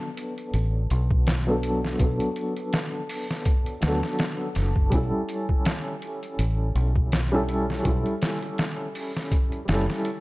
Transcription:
Already playing: felt piano F#3 B3 D4 A4
0.17 closed hi-hat
0.38 closed hi-hat
0.54 fingered electric bass A1, closed hi-hat
0.90 fingered electric bass B1, closed hi-hat
1.11 kick
1.27 snare, closed hi-hat
1.47 felt piano F#3 B3 D4 A4
1.63 closed hi-hat
1.84 snare
1.98 fingered electric bass B1, felt piano F#3 B3, kick, closed hi-hat
2.02 felt piano D4 A4
2.20 closed hi-hat
2.36 closed hi-hat
2.56 closed hi-hat
2.73 snare, closed hi-hat
3.09 open hi-hat
3.31 snare
3.45 kick, closed hi-hat
3.66 closed hi-hat
3.81 fingered electric bass D2, felt piano F#3 B3, snare, closed hi-hat
3.85 felt piano D4 A4
4.03 snare
4.19 snare, closed hi-hat
4.55 fingered electric bass F#1, snare, closed hi-hat
4.76 kick
4.90 fingered electric bass B1, felt piano G3 C#4, kick, closed hi-hat
4.95 felt piano E4 A4
5.29 closed hi-hat
5.49 kick
5.65 snare, closed hi-hat
6.02 closed hi-hat
6.23 closed hi-hat
6.39 fingered electric bass A1, closed hi-hat
6.75 fingered electric bass B1, closed hi-hat
6.96 kick
7.12 snare, closed hi-hat
7.32 felt piano G3 C#4 E4 A4
7.49 closed hi-hat
7.70 snare
7.83 fingered electric bass B1, felt piano G3 C#4, kick, closed hi-hat
7.87 felt piano E4 A4
8.06 closed hi-hat
8.22 snare, closed hi-hat
8.42 closed hi-hat
8.58 snare, closed hi-hat
8.95 open hi-hat
9.17 snare
9.32 kick, closed hi-hat
9.52 closed hi-hat
9.65 fingered electric bass F#1, felt piano G3 C#4, snare, closed hi-hat
9.70 felt piano E4 A4
9.90 snare
10.05 closed hi-hat

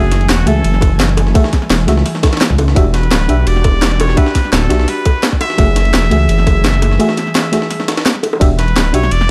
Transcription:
Already playing: detuned saw bass F#1, analog synth pad E3 A3 G#5, muted trumpet G#4
0.12 snare, closed hi-hat, ride
0.21 ride
0.29 detuned saw bass E1, muted trumpet F#4, snare, closed hi-hat, ride
0.46 detuned saw bass C#2, fm electric piano A3 F#4 G#4 E5, muted trumpet A4, closed hi-hat, ride
0.64 detuned saw bass F#1, closed hi-hat, ride
0.74 snare
0.81 kick, closed hi-hat, ride, high bongo
1.00 snare, closed hi-hat, ride
1.09 snare, ride
1.17 snare, closed hi-hat, ride, high bongo
1.27 snare
1.34 fm electric piano A3 F#4 G#4 E5, kick, closed hi-hat, ride
1.44 snare
1.53 kick, snare, closed hi-hat, ride
1.62 snare
1.70 detuned saw bass E1, snare, closed hi-hat, ride
1.87 detuned saw bass C#2, fm electric piano A3 F#4 G#4 E5, snare, closed hi-hat, ride
1.97 snare
2.06 snare, closed hi-hat, open hi-hat
2.15 snare
2.23 kick, snare, closed hi-hat, ride, high bongo
2.33 snare, ride
2.37 snare, ride
2.41 snare, closed hi-hat, ride
2.50 detuned saw bass C#2, kick, snare
2.58 closed hi-hat, ride, high bongo
2.68 snare
2.75 detuned saw bass E1, fm electric piano D4 F#4 G4 E5, analog synth pad D4 F#4 G4, kick, closed hi-hat, ride
2.94 muted trumpet B4, snare, closed hi-hat, ride
3.03 ride
3.11 detuned saw bass D1, snare, closed hi-hat, ride
3.28 detuned saw bass B1, fm electric piano D4 F#4 G4 E5, closed hi-hat, ride
3.47 detuned saw bass E1, muted trumpet D5, closed hi-hat, ride
3.56 snare
3.64 kick, closed hi-hat, ride, high bongo
3.82 snare, closed hi-hat, ride
3.91 snare, ride
4.00 muted trumpet C#5, snare, closed hi-hat, ride, high bongo
4.09 snare
4.16 fm electric piano D4 F#4 G4 E5, muted trumpet B4, kick, closed hi-hat, ride
4.26 snare
4.35 kick, snare, closed hi-hat, ride
4.44 snare
4.53 detuned saw bass D1, muted trumpet A4, snare, closed hi-hat, ride
4.69 detuned saw bass B1, fm electric piano D4 F#4 G4 E5, snare, closed hi-hat, ride
4.79 snare
4.88 muted trumpet B4, snare, closed hi-hat, open hi-hat
5.05 kick, closed hi-hat, ride, high bongo
5.23 snare, closed hi-hat, ride
5.32 kick, snare
5.41 analog synth pad E3 A3 G#4, muted trumpet E5, closed hi-hat, ride, high bongo
5.50 snare
5.58 detuned saw bass F#1, fm electric piano A3 F#4 G#4 E5, kick, closed hi-hat, ride
5.76 snare, closed hi-hat, ride
5.85 ride
5.94 detuned saw bass E1, snare, closed hi-hat, ride
6.10 detuned saw bass C#2, fm electric piano A3 F#4 G#4 E5, closed hi-hat, ride
6.29 detuned saw bass F#1, closed hi-hat, ride
6.38 snare
6.47 kick, closed hi-hat, ride, high bongo
6.64 snare, closed hi-hat, ride
6.74 snare, ride
6.82 snare, closed hi-hat, ride, high bongo
6.91 snare
6.99 fm electric piano A3 F#4 G#4 E5, closed hi-hat, ride
7.09 snare
7.17 snare, closed hi-hat, ride
7.27 snare
7.35 snare, closed hi-hat, ride
7.52 fm electric piano A3 F#4 G#4 E5, snare, closed hi-hat, ride
7.62 snare
7.70 snare, closed hi-hat, open hi-hat
7.80 snare
7.88 snare, closed hi-hat, ride, high bongo
7.97 snare, ride
8.06 snare, closed hi-hat, ride
8.15 snare
8.23 closed hi-hat, ride, high bongo
8.33 high bongo
8.40 detuned saw bass E1, fm electric piano D4 F#4 G4 E5, kick, closed hi-hat, ride
8.59 muted trumpet B4, snare, closed hi-hat, ride
8.68 ride
8.76 detuned saw bass D1, snare, closed hi-hat, ride
8.93 detuned saw bass B1, fm electric piano D4 F#4 G4 E5, muted trumpet C#5, closed hi-hat, ride
9.03 snare
9.11 detuned saw bass E1, muted trumpet D5, closed hi-hat, ride
9.21 snare

